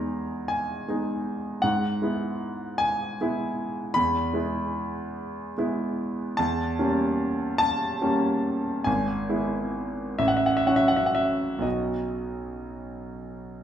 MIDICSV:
0, 0, Header, 1, 2, 480
1, 0, Start_track
1, 0, Tempo, 767263
1, 1030, Time_signature, 6, 3, 24, 8
1, 2479, Tempo, 808625
1, 4879, Tempo, 864553
1, 5839, Tempo, 924499
1, 6319, Tempo, 998336
1, 7749, End_track
2, 0, Start_track
2, 0, Title_t, "Grand piano"
2, 0, Program_c, 0, 0
2, 0, Control_c, 0, 64, 127
2, 0, Note_on_c, 0, 40, 54
2, 0, Note_on_c, 0, 56, 35
2, 0, Note_on_c, 0, 59, 35
2, 0, Note_on_c, 0, 63, 41
2, 0, Note_on_c, 0, 82, 73
2, 302, Note_on_c, 0, 80, 79
2, 310, Note_off_c, 0, 82, 0
2, 528, Note_off_c, 0, 56, 0
2, 529, Note_off_c, 0, 59, 0
2, 530, Note_off_c, 0, 63, 0
2, 553, Note_on_c, 0, 56, 42
2, 557, Note_on_c, 0, 59, 42
2, 562, Note_on_c, 0, 63, 46
2, 1004, Note_off_c, 0, 56, 0
2, 1006, Note_off_c, 0, 59, 0
2, 1008, Note_off_c, 0, 63, 0
2, 1012, Note_on_c, 0, 78, 83
2, 1023, Note_off_c, 0, 80, 0
2, 1023, Note_on_c, 0, 44, 56
2, 1039, Control_c, 0, 64, 0
2, 1044, Note_off_c, 0, 40, 0
2, 1136, Control_c, 0, 64, 127
2, 1259, Note_off_c, 0, 44, 0
2, 1263, Note_on_c, 0, 56, 40
2, 1269, Note_on_c, 0, 64, 42
2, 1271, Note_on_c, 0, 59, 41
2, 1740, Note_on_c, 0, 80, 95
2, 1751, Note_off_c, 0, 78, 0
2, 1974, Note_off_c, 0, 56, 0
2, 1977, Note_off_c, 0, 64, 0
2, 1978, Note_off_c, 0, 59, 0
2, 2008, Note_on_c, 0, 56, 49
2, 2008, Note_on_c, 0, 59, 42
2, 2013, Note_on_c, 0, 64, 54
2, 2458, Note_off_c, 0, 56, 0
2, 2459, Note_off_c, 0, 59, 0
2, 2461, Note_off_c, 0, 64, 0
2, 2465, Note_on_c, 0, 83, 102
2, 2471, Note_off_c, 0, 80, 0
2, 2477, Note_on_c, 0, 40, 59
2, 2490, Control_c, 0, 64, 0
2, 2573, Control_c, 0, 64, 127
2, 2700, Note_on_c, 0, 56, 46
2, 2703, Note_off_c, 0, 40, 0
2, 2705, Note_on_c, 0, 59, 45
2, 2705, Note_on_c, 0, 64, 46
2, 3407, Note_off_c, 0, 56, 0
2, 3410, Note_off_c, 0, 59, 0
2, 3410, Note_off_c, 0, 64, 0
2, 3438, Note_on_c, 0, 56, 49
2, 3438, Note_on_c, 0, 59, 49
2, 3443, Note_on_c, 0, 64, 56
2, 3895, Note_off_c, 0, 56, 0
2, 3895, Note_off_c, 0, 59, 0
2, 3897, Note_off_c, 0, 64, 0
2, 3909, Note_on_c, 0, 81, 94
2, 3911, Note_off_c, 0, 83, 0
2, 3918, Note_on_c, 0, 40, 65
2, 3929, Control_c, 0, 64, 0
2, 4034, Control_c, 0, 64, 127
2, 4151, Note_off_c, 0, 40, 0
2, 4158, Note_on_c, 0, 58, 45
2, 4159, Note_on_c, 0, 55, 52
2, 4159, Note_on_c, 0, 61, 52
2, 4620, Note_off_c, 0, 81, 0
2, 4629, Note_on_c, 0, 81, 110
2, 4857, Note_off_c, 0, 55, 0
2, 4857, Note_off_c, 0, 58, 0
2, 4857, Note_off_c, 0, 61, 0
2, 4885, Note_on_c, 0, 55, 53
2, 4887, Note_on_c, 0, 58, 47
2, 4888, Note_on_c, 0, 61, 55
2, 5334, Note_off_c, 0, 55, 0
2, 5335, Note_off_c, 0, 58, 0
2, 5335, Note_off_c, 0, 61, 0
2, 5344, Note_on_c, 0, 80, 79
2, 5349, Note_off_c, 0, 81, 0
2, 5355, Note_on_c, 0, 32, 66
2, 5367, Control_c, 0, 64, 0
2, 5456, Control_c, 0, 64, 127
2, 5590, Note_off_c, 0, 32, 0
2, 5594, Note_on_c, 0, 56, 44
2, 5595, Note_on_c, 0, 59, 43
2, 5599, Note_on_c, 0, 64, 52
2, 6053, Note_off_c, 0, 56, 0
2, 6053, Note_off_c, 0, 59, 0
2, 6055, Note_off_c, 0, 64, 0
2, 6071, Note_off_c, 0, 80, 0
2, 6073, Note_on_c, 0, 76, 78
2, 6075, Note_on_c, 0, 33, 55
2, 6087, Control_c, 0, 64, 0
2, 6121, Note_on_c, 0, 78, 74
2, 6124, Note_off_c, 0, 76, 0
2, 6167, Note_on_c, 0, 76, 71
2, 6173, Note_off_c, 0, 78, 0
2, 6198, Control_c, 0, 64, 127
2, 6216, Note_on_c, 0, 78, 76
2, 6221, Note_off_c, 0, 76, 0
2, 6271, Note_off_c, 0, 78, 0
2, 6271, Note_on_c, 0, 76, 76
2, 6312, Note_off_c, 0, 33, 0
2, 6321, Note_on_c, 0, 54, 46
2, 6324, Note_off_c, 0, 76, 0
2, 6324, Note_on_c, 0, 61, 46
2, 6324, Note_on_c, 0, 78, 77
2, 6327, Note_on_c, 0, 66, 47
2, 6368, Note_on_c, 0, 76, 78
2, 6372, Note_off_c, 0, 78, 0
2, 6418, Note_off_c, 0, 76, 0
2, 6425, Note_on_c, 0, 78, 79
2, 6466, Note_on_c, 0, 76, 71
2, 6471, Note_off_c, 0, 78, 0
2, 6513, Note_on_c, 0, 78, 72
2, 6515, Note_off_c, 0, 76, 0
2, 6553, Note_on_c, 0, 76, 76
2, 6563, Note_off_c, 0, 78, 0
2, 6762, Note_off_c, 0, 54, 0
2, 6764, Note_on_c, 0, 35, 46
2, 6770, Note_on_c, 0, 54, 42
2, 6775, Note_off_c, 0, 66, 0
2, 6776, Note_off_c, 0, 61, 0
2, 6776, Note_on_c, 0, 59, 41
2, 6780, Note_on_c, 0, 75, 53
2, 6782, Note_on_c, 0, 66, 39
2, 6787, Note_off_c, 0, 76, 0
2, 6802, Control_c, 0, 64, 0
2, 6923, Control_c, 0, 64, 127
2, 7749, Note_off_c, 0, 35, 0
2, 7749, Note_off_c, 0, 54, 0
2, 7749, Note_off_c, 0, 59, 0
2, 7749, Note_off_c, 0, 66, 0
2, 7749, Note_off_c, 0, 75, 0
2, 7749, End_track
0, 0, End_of_file